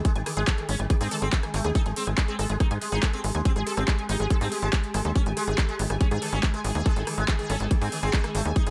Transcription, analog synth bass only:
0.16 G#1
0.37 G#1
0.69 G#1
0.79 G#1
1.01 G#2
1.22 G#1
1.54 G#1
1.65 D#2
1.86 G#1
2.07 G#1
2.39 G#1
2.50 G#1
2.71 G#2
2.92 G#1
3.24 G#1
3.35 D#2
3.56 G#1
3.77 G#1
4.09 G#1
4.20 G#1
4.41 G#2
4.62 G#1
4.94 G#1
5.05 D#2
5.26 G#1
5.47 G#1
5.79 G#1
5.90 G#1
6.11 G#2
6.33 G#1
6.64 G#1
6.75 D#2
6.96 G#1
7.18 G#1
7.50 G#1
7.60 G#1
7.81 G#2
8.03 G#1
8.35 G#1
8.45 D#2
8.67 G#1

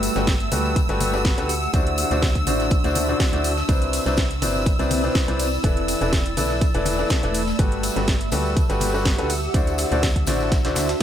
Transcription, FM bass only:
0.16 G1
0.52 D2
0.89 G1
1.38 D2
1.74 D2
2.11 D2
2.47 A1
2.84 D2
3.33 D2
3.69 C2
4.06 C2
4.42 G1
4.79 C2
5.28 C2
5.64 E1
6.01 E1
6.37 B1
6.74 E1
7.23 E1
7.59 G1
7.96 G1
8.32 D2
8.70 G1
9.18 D2
9.54 D2
9.92 D2
10.27 A1
10.65 D2

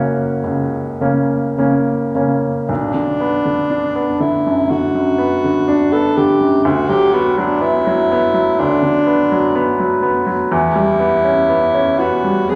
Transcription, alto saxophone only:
2.70 D4
4.21 E4
4.70 F#4
5.92 A4
6.17 G4
6.65 F#4
6.89 G4
7.13 F#4
7.38 D4
7.62 E4
8.59 D4
10.52 E4
11.99 F#4
12.49 G#4

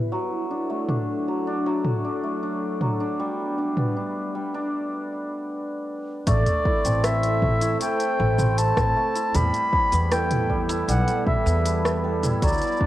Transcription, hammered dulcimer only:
0.12 F#3
0.51 D4
0.70 A3
0.89 D4
1.28 F#3
1.47 D4
1.66 F#3
2.04 D4
2.23 A3
2.43 D4
2.81 F#3
3.00 D4
3.20 G3
3.58 D4
3.77 B3
3.96 D4
4.35 G3
4.54 D4
6.27 A3
6.66 E4
6.85 C4
7.04 E4
7.43 A3
7.62 E4
7.81 A3
8.19 E4
8.38 C4
8.58 E4
8.96 A3
9.15 E4
9.34 G3
9.73 E4
9.92 B3
10.12 E4
10.50 G3
10.69 E4
10.89 G3
11.27 E4
11.46 B3
11.66 E4
12.04 G3
12.23 E4
12.42 F#3
12.81 D4

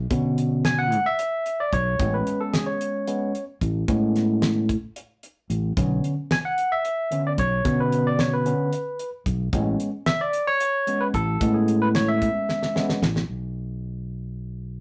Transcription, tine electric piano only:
0.10 D3 B3 C#4
0.65 G#5
0.79 F#5
1.06 E5
1.60 D5
1.73 C#5
1.99 G#3 B3 C#4
2.14 B4
2.41 A4
2.53 G#4
2.66 C#5
3.07 G#3 B3 C#4
3.88 G#3 B3 C#4
5.77 D3 B3 C#4
6.32 G#5
6.45 F#5
6.72 E5
7.11 D3 B3 C#4
7.27 D5
7.39 C#5
7.64 D3 B3 C#4
7.80 B4
8.07 D5
8.20 C#5
8.33 B4
8.45 D3 B3 C#4
9.53 G#3 B3 C#4
10.06 E5
10.21 D5
10.47 C#5
10.87 G#3 B3 C#4
11.01 B4
11.14 A4
11.41 G#3 B3 C#4
11.54 G#4
11.82 B4
11.95 C#5
12.08 E5
12.75 G#3 B3 C#4

